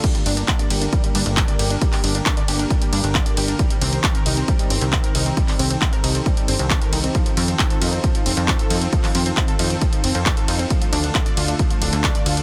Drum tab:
CC |x---------------|----------------|----------------|----------------|
RD |--x---x---x---x-|--x---x---x---x-|--x---x---x---x-|--x---x---x---x-|
HH |xxoxxxoxxxoxxxox|xooxxxoxxxoxxxox|xxoxxxoxxxoxxxox|xooxxxoxxxoxxxox|
CP |----x-------x---|-x--x-------x---|----x-------x---|-x--x-------x---|
BD |o---o---o---o---|o---o---o---o---|o---o---o---o---|o---o---o---o---|

CC |----------------|----------------|----------------|
RD |--x---x---x---x-|--x---x---x---x-|--x---x---x---x-|
HH |xxoxxxoxxxoxxxox|xooxxxoxxxoxxxox|xxoxxxoxxxoxxxox|
CP |----x-------x---|-x--x-------x---|----x-------x---|
BD |o---o---o---o---|o---o---o---o---|o---o---o---o---|